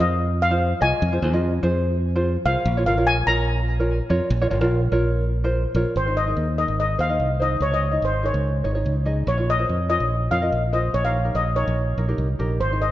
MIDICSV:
0, 0, Header, 1, 4, 480
1, 0, Start_track
1, 0, Key_signature, -4, "major"
1, 0, Tempo, 410959
1, 1196, Time_signature, 4, 2, 24, 8
1, 7919, Tempo, 415512
1, 15006, End_track
2, 0, Start_track
2, 0, Title_t, "Steel pan"
2, 0, Program_c, 0, 114
2, 0, Note_on_c, 0, 75, 87
2, 445, Note_off_c, 0, 75, 0
2, 493, Note_on_c, 0, 77, 100
2, 956, Note_on_c, 0, 80, 103
2, 978, Note_off_c, 0, 77, 0
2, 1868, Note_off_c, 0, 80, 0
2, 2869, Note_on_c, 0, 77, 93
2, 3331, Note_off_c, 0, 77, 0
2, 3345, Note_on_c, 0, 77, 88
2, 3583, Note_on_c, 0, 80, 108
2, 3595, Note_off_c, 0, 77, 0
2, 3818, Note_on_c, 0, 82, 105
2, 3834, Note_off_c, 0, 80, 0
2, 6420, Note_off_c, 0, 82, 0
2, 6972, Note_on_c, 0, 72, 75
2, 7206, Note_on_c, 0, 75, 83
2, 7211, Note_off_c, 0, 72, 0
2, 7675, Note_off_c, 0, 75, 0
2, 7689, Note_on_c, 0, 75, 77
2, 7909, Note_off_c, 0, 75, 0
2, 7940, Note_on_c, 0, 75, 84
2, 8176, Note_off_c, 0, 75, 0
2, 8180, Note_on_c, 0, 77, 94
2, 8657, Note_on_c, 0, 75, 88
2, 8662, Note_off_c, 0, 77, 0
2, 8891, Note_on_c, 0, 73, 84
2, 8893, Note_off_c, 0, 75, 0
2, 9002, Note_off_c, 0, 73, 0
2, 9024, Note_on_c, 0, 75, 87
2, 9377, Note_off_c, 0, 75, 0
2, 9384, Note_on_c, 0, 72, 73
2, 9616, Note_off_c, 0, 72, 0
2, 9624, Note_on_c, 0, 73, 71
2, 10057, Note_off_c, 0, 73, 0
2, 10810, Note_on_c, 0, 73, 80
2, 11050, Note_off_c, 0, 73, 0
2, 11060, Note_on_c, 0, 75, 87
2, 11495, Note_off_c, 0, 75, 0
2, 11519, Note_on_c, 0, 75, 88
2, 11999, Note_on_c, 0, 77, 96
2, 12012, Note_off_c, 0, 75, 0
2, 12445, Note_off_c, 0, 77, 0
2, 12486, Note_on_c, 0, 75, 81
2, 12727, Note_on_c, 0, 73, 80
2, 12729, Note_off_c, 0, 75, 0
2, 12847, Note_on_c, 0, 77, 85
2, 12852, Note_off_c, 0, 73, 0
2, 13175, Note_off_c, 0, 77, 0
2, 13204, Note_on_c, 0, 75, 81
2, 13442, Note_on_c, 0, 73, 72
2, 13449, Note_off_c, 0, 75, 0
2, 13888, Note_off_c, 0, 73, 0
2, 14649, Note_on_c, 0, 72, 82
2, 14892, Note_on_c, 0, 75, 81
2, 14893, Note_off_c, 0, 72, 0
2, 15006, Note_off_c, 0, 75, 0
2, 15006, End_track
3, 0, Start_track
3, 0, Title_t, "Ukulele"
3, 0, Program_c, 1, 24
3, 0, Note_on_c, 1, 65, 65
3, 0, Note_on_c, 1, 68, 65
3, 0, Note_on_c, 1, 72, 69
3, 354, Note_off_c, 1, 68, 0
3, 355, Note_off_c, 1, 65, 0
3, 355, Note_off_c, 1, 72, 0
3, 589, Note_on_c, 1, 65, 72
3, 597, Note_on_c, 1, 68, 57
3, 597, Note_on_c, 1, 72, 81
3, 812, Note_off_c, 1, 65, 0
3, 814, Note_off_c, 1, 68, 0
3, 814, Note_off_c, 1, 72, 0
3, 943, Note_on_c, 1, 75, 85
3, 952, Note_on_c, 1, 68, 69
3, 957, Note_on_c, 1, 65, 73
3, 1168, Note_off_c, 1, 75, 0
3, 1169, Note_off_c, 1, 65, 0
3, 1170, Note_off_c, 1, 68, 0
3, 1307, Note_on_c, 1, 65, 80
3, 1317, Note_on_c, 1, 68, 61
3, 1318, Note_on_c, 1, 72, 82
3, 1384, Note_off_c, 1, 65, 0
3, 1386, Note_off_c, 1, 68, 0
3, 1388, Note_off_c, 1, 72, 0
3, 1425, Note_on_c, 1, 68, 63
3, 1430, Note_on_c, 1, 72, 85
3, 1434, Note_on_c, 1, 65, 62
3, 1506, Note_off_c, 1, 68, 0
3, 1509, Note_off_c, 1, 65, 0
3, 1509, Note_off_c, 1, 72, 0
3, 1555, Note_on_c, 1, 65, 91
3, 1561, Note_on_c, 1, 68, 69
3, 1562, Note_on_c, 1, 75, 98
3, 1773, Note_off_c, 1, 65, 0
3, 1773, Note_off_c, 1, 68, 0
3, 1776, Note_off_c, 1, 75, 0
3, 1900, Note_on_c, 1, 72, 103
3, 1906, Note_on_c, 1, 65, 77
3, 1906, Note_on_c, 1, 68, 85
3, 2273, Note_off_c, 1, 72, 0
3, 2275, Note_off_c, 1, 65, 0
3, 2276, Note_off_c, 1, 68, 0
3, 2518, Note_on_c, 1, 68, 69
3, 2518, Note_on_c, 1, 72, 99
3, 2520, Note_on_c, 1, 65, 84
3, 2731, Note_off_c, 1, 68, 0
3, 2734, Note_off_c, 1, 65, 0
3, 2734, Note_off_c, 1, 72, 0
3, 2870, Note_on_c, 1, 68, 72
3, 2873, Note_on_c, 1, 72, 86
3, 2879, Note_on_c, 1, 65, 68
3, 3088, Note_off_c, 1, 68, 0
3, 3090, Note_off_c, 1, 72, 0
3, 3091, Note_off_c, 1, 65, 0
3, 3236, Note_on_c, 1, 73, 88
3, 3243, Note_on_c, 1, 70, 57
3, 3244, Note_on_c, 1, 65, 75
3, 3306, Note_off_c, 1, 70, 0
3, 3306, Note_off_c, 1, 73, 0
3, 3309, Note_off_c, 1, 65, 0
3, 3350, Note_on_c, 1, 70, 70
3, 3358, Note_on_c, 1, 65, 67
3, 3367, Note_on_c, 1, 73, 68
3, 3429, Note_off_c, 1, 65, 0
3, 3429, Note_off_c, 1, 70, 0
3, 3431, Note_off_c, 1, 73, 0
3, 3472, Note_on_c, 1, 70, 67
3, 3479, Note_on_c, 1, 65, 70
3, 3482, Note_on_c, 1, 73, 65
3, 3691, Note_off_c, 1, 70, 0
3, 3691, Note_off_c, 1, 73, 0
3, 3692, Note_off_c, 1, 65, 0
3, 3824, Note_on_c, 1, 70, 64
3, 3828, Note_on_c, 1, 65, 68
3, 3833, Note_on_c, 1, 73, 79
3, 4194, Note_off_c, 1, 73, 0
3, 4195, Note_off_c, 1, 65, 0
3, 4196, Note_off_c, 1, 70, 0
3, 4433, Note_on_c, 1, 70, 83
3, 4439, Note_on_c, 1, 65, 83
3, 4443, Note_on_c, 1, 73, 83
3, 4651, Note_off_c, 1, 70, 0
3, 4651, Note_off_c, 1, 73, 0
3, 4652, Note_off_c, 1, 65, 0
3, 4783, Note_on_c, 1, 65, 92
3, 4789, Note_on_c, 1, 70, 74
3, 4789, Note_on_c, 1, 73, 102
3, 5004, Note_off_c, 1, 65, 0
3, 5005, Note_off_c, 1, 70, 0
3, 5007, Note_off_c, 1, 73, 0
3, 5157, Note_on_c, 1, 73, 98
3, 5159, Note_on_c, 1, 70, 77
3, 5163, Note_on_c, 1, 65, 88
3, 5225, Note_off_c, 1, 70, 0
3, 5226, Note_off_c, 1, 73, 0
3, 5228, Note_off_c, 1, 65, 0
3, 5261, Note_on_c, 1, 73, 97
3, 5265, Note_on_c, 1, 65, 90
3, 5274, Note_on_c, 1, 70, 69
3, 5342, Note_off_c, 1, 73, 0
3, 5344, Note_off_c, 1, 65, 0
3, 5346, Note_off_c, 1, 70, 0
3, 5382, Note_on_c, 1, 70, 80
3, 5389, Note_on_c, 1, 65, 87
3, 5391, Note_on_c, 1, 73, 91
3, 5606, Note_off_c, 1, 70, 0
3, 5606, Note_off_c, 1, 73, 0
3, 5607, Note_off_c, 1, 65, 0
3, 5744, Note_on_c, 1, 70, 86
3, 5749, Note_on_c, 1, 65, 76
3, 5751, Note_on_c, 1, 73, 93
3, 6115, Note_off_c, 1, 73, 0
3, 6116, Note_off_c, 1, 65, 0
3, 6116, Note_off_c, 1, 70, 0
3, 6352, Note_on_c, 1, 65, 79
3, 6355, Note_on_c, 1, 70, 71
3, 6359, Note_on_c, 1, 72, 93
3, 6571, Note_off_c, 1, 70, 0
3, 6572, Note_off_c, 1, 65, 0
3, 6575, Note_off_c, 1, 72, 0
3, 6721, Note_on_c, 1, 70, 87
3, 6723, Note_on_c, 1, 65, 83
3, 6730, Note_on_c, 1, 73, 88
3, 6935, Note_off_c, 1, 65, 0
3, 6936, Note_off_c, 1, 73, 0
3, 6937, Note_off_c, 1, 70, 0
3, 7081, Note_on_c, 1, 72, 67
3, 7091, Note_on_c, 1, 68, 59
3, 7097, Note_on_c, 1, 63, 59
3, 7223, Note_off_c, 1, 72, 0
3, 7224, Note_off_c, 1, 63, 0
3, 7225, Note_off_c, 1, 68, 0
3, 7320, Note_on_c, 1, 68, 59
3, 7327, Note_on_c, 1, 63, 59
3, 7328, Note_on_c, 1, 70, 71
3, 7537, Note_off_c, 1, 70, 0
3, 7539, Note_off_c, 1, 63, 0
3, 7539, Note_off_c, 1, 68, 0
3, 7685, Note_on_c, 1, 68, 62
3, 7688, Note_on_c, 1, 63, 60
3, 7692, Note_on_c, 1, 70, 61
3, 7973, Note_off_c, 1, 70, 0
3, 7974, Note_off_c, 1, 63, 0
3, 7974, Note_off_c, 1, 68, 0
3, 8154, Note_on_c, 1, 72, 70
3, 8160, Note_on_c, 1, 68, 56
3, 8171, Note_on_c, 1, 63, 47
3, 8234, Note_off_c, 1, 68, 0
3, 8235, Note_off_c, 1, 72, 0
3, 8236, Note_off_c, 1, 63, 0
3, 8279, Note_on_c, 1, 75, 75
3, 8281, Note_on_c, 1, 68, 56
3, 8285, Note_on_c, 1, 63, 53
3, 8496, Note_off_c, 1, 63, 0
3, 8496, Note_off_c, 1, 68, 0
3, 8498, Note_off_c, 1, 75, 0
3, 8631, Note_on_c, 1, 72, 78
3, 8641, Note_on_c, 1, 68, 55
3, 8646, Note_on_c, 1, 63, 59
3, 8853, Note_off_c, 1, 72, 0
3, 8854, Note_off_c, 1, 63, 0
3, 8855, Note_off_c, 1, 68, 0
3, 8995, Note_on_c, 1, 73, 72
3, 8998, Note_on_c, 1, 68, 56
3, 9005, Note_on_c, 1, 63, 52
3, 9137, Note_off_c, 1, 68, 0
3, 9139, Note_off_c, 1, 63, 0
3, 9139, Note_off_c, 1, 73, 0
3, 9227, Note_on_c, 1, 75, 71
3, 9233, Note_on_c, 1, 68, 52
3, 9242, Note_on_c, 1, 63, 55
3, 9450, Note_off_c, 1, 68, 0
3, 9451, Note_off_c, 1, 63, 0
3, 9452, Note_off_c, 1, 75, 0
3, 9591, Note_on_c, 1, 68, 64
3, 9596, Note_on_c, 1, 63, 57
3, 9601, Note_on_c, 1, 70, 62
3, 9884, Note_off_c, 1, 63, 0
3, 9884, Note_off_c, 1, 70, 0
3, 9886, Note_off_c, 1, 68, 0
3, 10069, Note_on_c, 1, 73, 73
3, 10073, Note_on_c, 1, 68, 58
3, 10077, Note_on_c, 1, 63, 53
3, 10148, Note_off_c, 1, 63, 0
3, 10149, Note_off_c, 1, 68, 0
3, 10150, Note_off_c, 1, 73, 0
3, 10191, Note_on_c, 1, 73, 81
3, 10197, Note_on_c, 1, 68, 68
3, 10202, Note_on_c, 1, 63, 63
3, 10413, Note_off_c, 1, 63, 0
3, 10413, Note_off_c, 1, 68, 0
3, 10413, Note_off_c, 1, 73, 0
3, 10547, Note_on_c, 1, 68, 81
3, 10554, Note_on_c, 1, 63, 81
3, 10554, Note_on_c, 1, 75, 72
3, 10769, Note_off_c, 1, 68, 0
3, 10769, Note_off_c, 1, 75, 0
3, 10772, Note_off_c, 1, 63, 0
3, 10918, Note_on_c, 1, 73, 79
3, 10924, Note_on_c, 1, 65, 64
3, 10926, Note_on_c, 1, 70, 50
3, 11060, Note_off_c, 1, 73, 0
3, 11061, Note_off_c, 1, 70, 0
3, 11062, Note_off_c, 1, 65, 0
3, 11161, Note_on_c, 1, 72, 66
3, 11165, Note_on_c, 1, 65, 54
3, 11166, Note_on_c, 1, 70, 59
3, 11376, Note_off_c, 1, 65, 0
3, 11377, Note_off_c, 1, 72, 0
3, 11379, Note_off_c, 1, 70, 0
3, 11511, Note_on_c, 1, 65, 63
3, 11515, Note_on_c, 1, 70, 49
3, 11516, Note_on_c, 1, 73, 73
3, 11804, Note_off_c, 1, 70, 0
3, 11805, Note_off_c, 1, 65, 0
3, 11807, Note_off_c, 1, 73, 0
3, 11992, Note_on_c, 1, 70, 59
3, 11996, Note_on_c, 1, 65, 62
3, 12004, Note_on_c, 1, 73, 68
3, 12071, Note_off_c, 1, 65, 0
3, 12072, Note_off_c, 1, 70, 0
3, 12072, Note_off_c, 1, 73, 0
3, 12122, Note_on_c, 1, 75, 74
3, 12129, Note_on_c, 1, 70, 52
3, 12135, Note_on_c, 1, 65, 54
3, 12339, Note_off_c, 1, 75, 0
3, 12340, Note_off_c, 1, 65, 0
3, 12340, Note_off_c, 1, 70, 0
3, 12473, Note_on_c, 1, 70, 62
3, 12479, Note_on_c, 1, 72, 75
3, 12484, Note_on_c, 1, 65, 60
3, 12692, Note_off_c, 1, 70, 0
3, 12696, Note_off_c, 1, 65, 0
3, 12697, Note_off_c, 1, 72, 0
3, 12847, Note_on_c, 1, 63, 65
3, 12855, Note_on_c, 1, 70, 75
3, 12861, Note_on_c, 1, 67, 54
3, 12985, Note_off_c, 1, 63, 0
3, 12988, Note_off_c, 1, 67, 0
3, 12989, Note_off_c, 1, 70, 0
3, 13079, Note_on_c, 1, 70, 66
3, 13081, Note_on_c, 1, 63, 58
3, 13081, Note_on_c, 1, 67, 58
3, 13295, Note_off_c, 1, 63, 0
3, 13297, Note_off_c, 1, 70, 0
3, 13298, Note_off_c, 1, 67, 0
3, 13438, Note_on_c, 1, 63, 61
3, 13441, Note_on_c, 1, 67, 57
3, 13442, Note_on_c, 1, 70, 72
3, 13728, Note_off_c, 1, 67, 0
3, 13730, Note_off_c, 1, 63, 0
3, 13732, Note_off_c, 1, 70, 0
3, 13923, Note_on_c, 1, 70, 68
3, 13931, Note_on_c, 1, 63, 66
3, 13934, Note_on_c, 1, 67, 47
3, 13998, Note_off_c, 1, 70, 0
3, 14000, Note_off_c, 1, 67, 0
3, 14001, Note_off_c, 1, 63, 0
3, 14044, Note_on_c, 1, 67, 73
3, 14048, Note_on_c, 1, 63, 69
3, 14050, Note_on_c, 1, 70, 73
3, 14261, Note_off_c, 1, 63, 0
3, 14261, Note_off_c, 1, 67, 0
3, 14261, Note_off_c, 1, 70, 0
3, 14400, Note_on_c, 1, 67, 81
3, 14404, Note_on_c, 1, 63, 74
3, 14408, Note_on_c, 1, 70, 80
3, 14619, Note_off_c, 1, 67, 0
3, 14619, Note_off_c, 1, 70, 0
3, 14620, Note_off_c, 1, 63, 0
3, 14780, Note_on_c, 1, 63, 62
3, 14789, Note_on_c, 1, 68, 55
3, 14789, Note_on_c, 1, 72, 73
3, 14915, Note_off_c, 1, 63, 0
3, 14916, Note_off_c, 1, 68, 0
3, 14918, Note_off_c, 1, 72, 0
3, 15006, End_track
4, 0, Start_track
4, 0, Title_t, "Fingered electric bass"
4, 0, Program_c, 2, 33
4, 2, Note_on_c, 2, 41, 85
4, 847, Note_off_c, 2, 41, 0
4, 952, Note_on_c, 2, 36, 84
4, 1065, Note_off_c, 2, 36, 0
4, 1191, Note_on_c, 2, 41, 106
4, 1405, Note_off_c, 2, 41, 0
4, 1429, Note_on_c, 2, 39, 94
4, 1551, Note_off_c, 2, 39, 0
4, 1551, Note_on_c, 2, 41, 98
4, 1867, Note_off_c, 2, 41, 0
4, 1905, Note_on_c, 2, 41, 86
4, 2755, Note_off_c, 2, 41, 0
4, 2866, Note_on_c, 2, 36, 88
4, 2980, Note_off_c, 2, 36, 0
4, 3101, Note_on_c, 2, 34, 115
4, 3318, Note_off_c, 2, 34, 0
4, 3342, Note_on_c, 2, 31, 92
4, 3466, Note_off_c, 2, 31, 0
4, 3466, Note_on_c, 2, 34, 98
4, 3784, Note_off_c, 2, 34, 0
4, 3816, Note_on_c, 2, 34, 87
4, 4670, Note_off_c, 2, 34, 0
4, 4790, Note_on_c, 2, 41, 81
4, 4902, Note_off_c, 2, 41, 0
4, 5027, Note_on_c, 2, 34, 112
4, 5241, Note_off_c, 2, 34, 0
4, 5268, Note_on_c, 2, 31, 91
4, 5385, Note_off_c, 2, 31, 0
4, 5385, Note_on_c, 2, 34, 101
4, 5703, Note_off_c, 2, 34, 0
4, 5744, Note_on_c, 2, 34, 85
4, 6597, Note_off_c, 2, 34, 0
4, 6711, Note_on_c, 2, 34, 87
4, 6824, Note_off_c, 2, 34, 0
4, 6957, Note_on_c, 2, 32, 85
4, 7382, Note_off_c, 2, 32, 0
4, 7436, Note_on_c, 2, 39, 77
4, 7762, Note_off_c, 2, 39, 0
4, 7804, Note_on_c, 2, 32, 77
4, 8117, Note_off_c, 2, 32, 0
4, 8162, Note_on_c, 2, 39, 80
4, 8372, Note_off_c, 2, 39, 0
4, 8399, Note_on_c, 2, 36, 76
4, 8822, Note_off_c, 2, 36, 0
4, 8870, Note_on_c, 2, 37, 79
4, 9296, Note_off_c, 2, 37, 0
4, 9353, Note_on_c, 2, 32, 76
4, 9678, Note_off_c, 2, 32, 0
4, 9721, Note_on_c, 2, 37, 78
4, 10034, Note_off_c, 2, 37, 0
4, 10075, Note_on_c, 2, 32, 80
4, 10287, Note_off_c, 2, 32, 0
4, 10317, Note_on_c, 2, 37, 81
4, 10740, Note_off_c, 2, 37, 0
4, 10795, Note_on_c, 2, 34, 90
4, 11219, Note_off_c, 2, 34, 0
4, 11283, Note_on_c, 2, 41, 75
4, 11604, Note_off_c, 2, 41, 0
4, 11641, Note_on_c, 2, 34, 78
4, 11954, Note_off_c, 2, 34, 0
4, 12000, Note_on_c, 2, 41, 81
4, 12211, Note_off_c, 2, 41, 0
4, 12243, Note_on_c, 2, 34, 75
4, 12665, Note_off_c, 2, 34, 0
4, 12726, Note_on_c, 2, 34, 86
4, 13147, Note_off_c, 2, 34, 0
4, 13196, Note_on_c, 2, 34, 82
4, 13521, Note_off_c, 2, 34, 0
4, 13574, Note_on_c, 2, 34, 76
4, 13883, Note_off_c, 2, 34, 0
4, 13921, Note_on_c, 2, 34, 79
4, 14133, Note_off_c, 2, 34, 0
4, 14158, Note_on_c, 2, 36, 74
4, 14375, Note_off_c, 2, 36, 0
4, 14407, Note_on_c, 2, 34, 70
4, 14620, Note_off_c, 2, 34, 0
4, 14647, Note_on_c, 2, 32, 80
4, 15006, Note_off_c, 2, 32, 0
4, 15006, End_track
0, 0, End_of_file